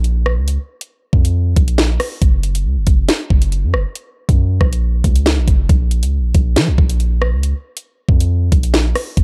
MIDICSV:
0, 0, Header, 1, 3, 480
1, 0, Start_track
1, 0, Key_signature, -5, "minor"
1, 0, Tempo, 434783
1, 527, Time_signature, 4, 2, 24, 8
1, 10195, End_track
2, 0, Start_track
2, 0, Title_t, "808-style bass"
2, 0, Program_c, 0, 38
2, 0, Note_on_c, 0, 34, 106
2, 413, Note_on_c, 0, 37, 95
2, 430, Note_off_c, 0, 34, 0
2, 641, Note_off_c, 0, 37, 0
2, 1248, Note_on_c, 0, 41, 103
2, 1708, Note_off_c, 0, 41, 0
2, 1728, Note_on_c, 0, 34, 104
2, 2188, Note_off_c, 0, 34, 0
2, 2447, Note_on_c, 0, 30, 102
2, 2927, Note_on_c, 0, 37, 99
2, 2944, Note_off_c, 0, 30, 0
2, 3054, Note_on_c, 0, 30, 95
2, 3071, Note_off_c, 0, 37, 0
2, 3161, Note_off_c, 0, 30, 0
2, 3167, Note_on_c, 0, 30, 103
2, 3397, Note_off_c, 0, 30, 0
2, 3647, Note_on_c, 0, 30, 103
2, 4014, Note_on_c, 0, 42, 97
2, 4031, Note_off_c, 0, 30, 0
2, 4127, Note_on_c, 0, 30, 100
2, 4144, Note_off_c, 0, 42, 0
2, 4248, Note_off_c, 0, 30, 0
2, 4734, Note_on_c, 0, 42, 100
2, 5072, Note_off_c, 0, 42, 0
2, 5086, Note_on_c, 0, 34, 106
2, 5547, Note_off_c, 0, 34, 0
2, 5567, Note_on_c, 0, 37, 101
2, 5933, Note_on_c, 0, 34, 104
2, 5949, Note_off_c, 0, 37, 0
2, 6040, Note_off_c, 0, 34, 0
2, 6046, Note_on_c, 0, 30, 104
2, 6276, Note_off_c, 0, 30, 0
2, 6286, Note_on_c, 0, 34, 110
2, 6653, Note_on_c, 0, 37, 98
2, 6670, Note_off_c, 0, 34, 0
2, 6830, Note_on_c, 0, 34, 98
2, 6846, Note_off_c, 0, 37, 0
2, 6997, Note_off_c, 0, 34, 0
2, 7007, Note_on_c, 0, 34, 108
2, 7246, Note_on_c, 0, 53, 96
2, 7262, Note_off_c, 0, 34, 0
2, 7373, Note_on_c, 0, 34, 104
2, 7390, Note_off_c, 0, 53, 0
2, 7481, Note_off_c, 0, 34, 0
2, 7487, Note_on_c, 0, 34, 106
2, 8095, Note_on_c, 0, 37, 100
2, 8111, Note_off_c, 0, 34, 0
2, 8322, Note_off_c, 0, 37, 0
2, 8927, Note_on_c, 0, 41, 108
2, 9387, Note_off_c, 0, 41, 0
2, 9407, Note_on_c, 0, 34, 103
2, 9867, Note_off_c, 0, 34, 0
2, 10126, Note_on_c, 0, 30, 109
2, 10195, Note_off_c, 0, 30, 0
2, 10195, End_track
3, 0, Start_track
3, 0, Title_t, "Drums"
3, 47, Note_on_c, 9, 42, 59
3, 158, Note_off_c, 9, 42, 0
3, 286, Note_on_c, 9, 37, 100
3, 397, Note_off_c, 9, 37, 0
3, 526, Note_on_c, 9, 42, 77
3, 637, Note_off_c, 9, 42, 0
3, 895, Note_on_c, 9, 42, 85
3, 1006, Note_off_c, 9, 42, 0
3, 1247, Note_on_c, 9, 36, 83
3, 1358, Note_off_c, 9, 36, 0
3, 1378, Note_on_c, 9, 42, 84
3, 1488, Note_off_c, 9, 42, 0
3, 1727, Note_on_c, 9, 42, 78
3, 1728, Note_on_c, 9, 36, 89
3, 1838, Note_off_c, 9, 36, 0
3, 1838, Note_off_c, 9, 42, 0
3, 1853, Note_on_c, 9, 42, 80
3, 1963, Note_off_c, 9, 42, 0
3, 1967, Note_on_c, 9, 38, 107
3, 1969, Note_on_c, 9, 42, 61
3, 2078, Note_off_c, 9, 38, 0
3, 2079, Note_off_c, 9, 42, 0
3, 2206, Note_on_c, 9, 46, 57
3, 2207, Note_on_c, 9, 37, 96
3, 2317, Note_off_c, 9, 37, 0
3, 2317, Note_off_c, 9, 46, 0
3, 2446, Note_on_c, 9, 42, 77
3, 2447, Note_on_c, 9, 36, 109
3, 2557, Note_off_c, 9, 42, 0
3, 2558, Note_off_c, 9, 36, 0
3, 2687, Note_on_c, 9, 42, 73
3, 2797, Note_off_c, 9, 42, 0
3, 2815, Note_on_c, 9, 42, 83
3, 2925, Note_off_c, 9, 42, 0
3, 3164, Note_on_c, 9, 42, 75
3, 3167, Note_on_c, 9, 36, 86
3, 3275, Note_off_c, 9, 42, 0
3, 3278, Note_off_c, 9, 36, 0
3, 3406, Note_on_c, 9, 42, 78
3, 3407, Note_on_c, 9, 38, 106
3, 3517, Note_off_c, 9, 38, 0
3, 3517, Note_off_c, 9, 42, 0
3, 3648, Note_on_c, 9, 36, 89
3, 3758, Note_off_c, 9, 36, 0
3, 3772, Note_on_c, 9, 42, 77
3, 3883, Note_off_c, 9, 42, 0
3, 3888, Note_on_c, 9, 42, 58
3, 3998, Note_off_c, 9, 42, 0
3, 4126, Note_on_c, 9, 37, 94
3, 4237, Note_off_c, 9, 37, 0
3, 4366, Note_on_c, 9, 42, 79
3, 4476, Note_off_c, 9, 42, 0
3, 4734, Note_on_c, 9, 36, 96
3, 4735, Note_on_c, 9, 42, 87
3, 4844, Note_off_c, 9, 36, 0
3, 4845, Note_off_c, 9, 42, 0
3, 5086, Note_on_c, 9, 37, 88
3, 5087, Note_on_c, 9, 36, 84
3, 5197, Note_off_c, 9, 36, 0
3, 5197, Note_off_c, 9, 37, 0
3, 5218, Note_on_c, 9, 42, 82
3, 5328, Note_off_c, 9, 42, 0
3, 5567, Note_on_c, 9, 36, 89
3, 5567, Note_on_c, 9, 42, 77
3, 5677, Note_off_c, 9, 36, 0
3, 5677, Note_off_c, 9, 42, 0
3, 5692, Note_on_c, 9, 42, 80
3, 5802, Note_off_c, 9, 42, 0
3, 5806, Note_on_c, 9, 38, 109
3, 5808, Note_on_c, 9, 42, 62
3, 5917, Note_off_c, 9, 38, 0
3, 5918, Note_off_c, 9, 42, 0
3, 6046, Note_on_c, 9, 36, 90
3, 6046, Note_on_c, 9, 42, 75
3, 6156, Note_off_c, 9, 36, 0
3, 6156, Note_off_c, 9, 42, 0
3, 6286, Note_on_c, 9, 36, 109
3, 6286, Note_on_c, 9, 42, 77
3, 6396, Note_off_c, 9, 42, 0
3, 6397, Note_off_c, 9, 36, 0
3, 6526, Note_on_c, 9, 42, 73
3, 6637, Note_off_c, 9, 42, 0
3, 6655, Note_on_c, 9, 42, 85
3, 6765, Note_off_c, 9, 42, 0
3, 7004, Note_on_c, 9, 42, 74
3, 7007, Note_on_c, 9, 36, 87
3, 7115, Note_off_c, 9, 42, 0
3, 7117, Note_off_c, 9, 36, 0
3, 7246, Note_on_c, 9, 38, 107
3, 7246, Note_on_c, 9, 42, 73
3, 7356, Note_off_c, 9, 42, 0
3, 7357, Note_off_c, 9, 38, 0
3, 7487, Note_on_c, 9, 36, 89
3, 7598, Note_off_c, 9, 36, 0
3, 7612, Note_on_c, 9, 42, 79
3, 7722, Note_off_c, 9, 42, 0
3, 7728, Note_on_c, 9, 42, 58
3, 7838, Note_off_c, 9, 42, 0
3, 7967, Note_on_c, 9, 37, 96
3, 8077, Note_off_c, 9, 37, 0
3, 8206, Note_on_c, 9, 42, 77
3, 8316, Note_off_c, 9, 42, 0
3, 8575, Note_on_c, 9, 42, 85
3, 8685, Note_off_c, 9, 42, 0
3, 8926, Note_on_c, 9, 36, 86
3, 9037, Note_off_c, 9, 36, 0
3, 9058, Note_on_c, 9, 42, 83
3, 9168, Note_off_c, 9, 42, 0
3, 9406, Note_on_c, 9, 42, 77
3, 9407, Note_on_c, 9, 36, 88
3, 9516, Note_off_c, 9, 42, 0
3, 9517, Note_off_c, 9, 36, 0
3, 9531, Note_on_c, 9, 42, 78
3, 9642, Note_off_c, 9, 42, 0
3, 9646, Note_on_c, 9, 38, 105
3, 9648, Note_on_c, 9, 42, 63
3, 9757, Note_off_c, 9, 38, 0
3, 9758, Note_off_c, 9, 42, 0
3, 9886, Note_on_c, 9, 37, 96
3, 9886, Note_on_c, 9, 46, 60
3, 9996, Note_off_c, 9, 46, 0
3, 9997, Note_off_c, 9, 37, 0
3, 10125, Note_on_c, 9, 42, 76
3, 10126, Note_on_c, 9, 36, 111
3, 10195, Note_off_c, 9, 36, 0
3, 10195, Note_off_c, 9, 42, 0
3, 10195, End_track
0, 0, End_of_file